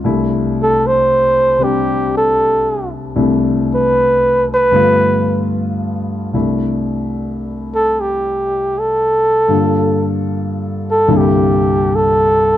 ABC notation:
X:1
M:4/4
L:1/8
Q:"Swing" 1/4=76
K:C
V:1 name="Flugelhorn"
z A c2 G A2 z | z B2 B3 z2 | z3 A G2 A2- | A z2 A G2 A2 |]
V:2 name="Grand piano"
[C,,C,A,DE]4 [C,G,CD]4 | [C,,C,A,DE]4 [G,,D,A,B,F]4 | [C,,C,A,DE]8 | [G,,D,_B,FA]4 [C,,G,,D,B,EA]4 |]